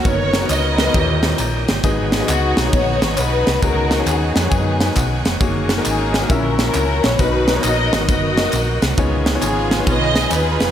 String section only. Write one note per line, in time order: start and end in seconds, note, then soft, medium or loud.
0.05 0.49 A#4 medium
0.05 0.50 C#5 loud
0.50 1.35 A#4 medium
0.50 1.35 B4 medium
0.50 1.39 D#5 loud
2.29 3.14 B3 medium
2.29 3.14 D#4 medium
2.29 2.70 F#4 loud
2.74 3.17 F#4 medium
2.74 3.18 C#5 loud
3.19 3.60 D#4 medium
3.19 3.60 F#4 medium
3.19 3.63 B4 loud
3.63 4.07 D#4 medium
3.63 4.48 F#4 medium
3.63 4.07 A#4 loud
4.08 5.22 B3 medium
4.08 5.22 D#4 medium
4.08 5.26 G#4 medium
5.85 6.27 C#4 medium
5.85 6.27 D#4 medium
5.85 6.27 G#4 medium
6.29 6.67 C#4 medium
6.29 6.67 E4 medium
6.29 6.66 A#4 loud
6.67 7.16 C#4 medium
6.67 7.16 E4 medium
6.67 7.01 A#4 loud
7.04 7.19 C#5 loud
7.19 8.05 D#4 medium
7.19 7.64 F#4 medium
7.19 7.64 B4 loud
7.65 8.09 F#4 medium
7.65 8.09 A#4 medium
7.65 8.06 D#5 loud
8.09 8.94 F#4 medium
8.09 8.95 A#4 medium
8.09 8.79 D#5 medium
9.44 10.28 B3 medium
9.44 10.28 F4 medium
9.44 9.85 G#4 medium
9.88 10.71 G#4 medium
9.88 10.32 B4 medium
9.88 10.33 D#5 loud
10.33 10.71 D#4 medium
10.33 10.71 F4 medium
10.33 10.71 B4 loud